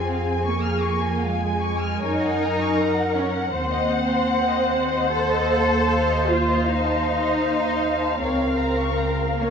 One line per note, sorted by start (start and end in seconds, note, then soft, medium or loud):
0.00 1.99 F2 medium
0.00 0.46 C4 medium
0.00 1.99 G#4 soft
0.00 2.76 G#5 soft
0.10 0.28 F5 soft
0.27 0.46 G#5 soft
0.46 1.21 A#3 medium
0.46 0.64 C#6 soft
0.64 0.83 F6 soft
0.83 1.02 C#6 soft
1.03 1.22 G#5 soft
1.21 2.03 G#3 medium
1.21 1.41 F5 medium
1.40 1.61 G#5 soft
1.61 1.82 C#6 soft
1.82 2.02 F6 soft
2.02 3.51 F#2 medium
2.02 3.16 D#4 medium
2.02 3.51 A#4 medium
2.02 2.21 C#5 soft
2.22 2.42 F#5 soft
2.42 2.61 A#5 medium
2.61 2.79 C#6 soft
2.79 5.90 F#5 medium
2.79 2.98 A#5 soft
2.97 3.16 F#5 soft
3.16 3.54 C#4 medium
3.16 3.36 C#5 soft
3.33 3.53 F#5 soft
3.52 8.21 D#2 medium
3.52 5.09 C4 medium
3.52 3.70 C5 soft
3.52 8.17 C5 medium
3.71 3.91 D#5 medium
3.89 4.09 F#5 soft
4.08 4.29 C6 soft
4.28 4.48 F#5 medium
4.48 4.69 D#5 soft
4.69 4.91 C5 soft
4.91 5.11 D#5 soft
5.10 6.26 A4 medium
5.10 5.30 C5 medium
5.30 5.51 D#5 soft
5.50 5.70 F5 soft
5.69 5.89 A5 soft
5.89 6.09 F5 medium
5.89 9.50 F5 medium
6.09 6.28 D#5 soft
6.29 6.67 F4 medium
6.29 6.48 C5 soft
6.48 6.67 D#5 soft
6.66 8.21 D#4 medium
6.66 6.84 F5 soft
6.84 7.04 A5 soft
7.04 7.24 F5 medium
7.24 7.43 D#5 soft
7.44 7.63 C5 medium
7.64 7.83 D#5 soft
7.84 8.02 F5 soft
8.02 8.21 A5 soft
8.19 9.50 C#2 medium
8.19 9.35 C4 medium
8.19 9.50 A#4 medium
8.19 8.38 C#5 medium
8.41 8.60 F5 soft
8.60 8.79 A#5 soft
8.81 9.00 C#6 soft
8.98 9.18 A#5 soft
9.20 9.39 F5 soft
9.38 9.50 A#3 medium
9.38 9.50 C#5 soft